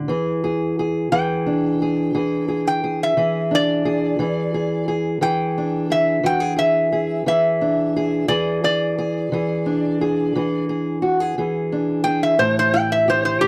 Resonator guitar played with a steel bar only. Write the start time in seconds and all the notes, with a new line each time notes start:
1.12 G5
2.67 G5
3.03 E5
3.55 D5
5.23 G5
5.92 E5
6.26 G5
6.59 E5
7.28 E5
8.28 D5
8.64 D5
12.04 G5
12.23 E5
12.39 C5
12.59 C5
12.74 G5
12.92 E5
13.10 C5
13.25 C5
13.41 G4